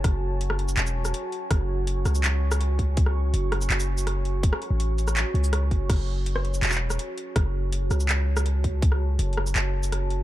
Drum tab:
CC |------------------------------------------------------------------------------------------------|------------------------------------------------------------------------------------------------|------------------------------------------------------------------------------------------------|------------------------------------------------------------------------------------------------|
HH |x-----------------------x-----------x-----------x-----------------------x-----------x-----------|x-----------------------x-----------x-----------x-----------------------x-----------x-----------|x-----------------------x-----------x-----------x-----------------------x-----------x-----------|x-----------x-----------x-----------x-----------x-----------x-----------x-----------x-----------|
SH |------------------------------------------x-----------x-----------x-----------------------------|------------------------------------x-----x-----------------------x-----------------------------|------------------------------------------x-----------x-----------x-----------------------------|------------------------------------x-----x-----------------------x-----------------------------|
CP |------------------------------------------------x-----------------------------------------------|------------------------------------------------x-----------------------------------------------|------------------------------------------------x-----------------------------------------------|------------------------------------------------x-----------------------------------------------|
SD |r-----------------------------r-----------------------------------r-----------------------------|r-----------------------------------r-----------------------------r-----------------------------|------r-----------------------------r-----------------------------------r-----------------------|------r-----------------------------------r-----------------------------r-----------------------|
BD |o-----------------------------------------------------------------------------------------------|o-----------------------------------------------------------------------------------o-----------|o-----------------------------------------------------------------------------------------------|o-----------------------------------------------------------------------------------o-----------|

CC |x-----------------------------------------------------------------------------------------------|------------------------------------------------------------------------------------------------|------------------------------------------------------------------------------------------------|
HH |x-----------------------x-----------x-----------x-----------------------x-----------x-----------|x-----------------------x-----------x-----------x-----------------------x-----------x-----------|x-----------------------x--------x--------------x-----------------------x-----------x-----------|
SH |------------------------------------------x-----------x-----------x-----------------------------|------------------------------------x-----x-----------------------x-----------------------------|------------------------------------------x-----------------------x-----------------------------|
CP |------------------------------------------------x---x---x---------------------------------------|------------------------------------------------x-----------------------------------------------|------------------------------------------------x-----------------------------------------------|
SD |r-----------------------------r-----------------------------------r-----------------------------|r-----------------------------------r-----------------------------r-----------------------------|------r-----------------------------r-----------------------------------r-----------------------|
BD |o-----------------------------------------------------------------------------------------------|o-----------------------------------------------------------------------------------o-----------|o-----------------------------------------------------------------------------------------------|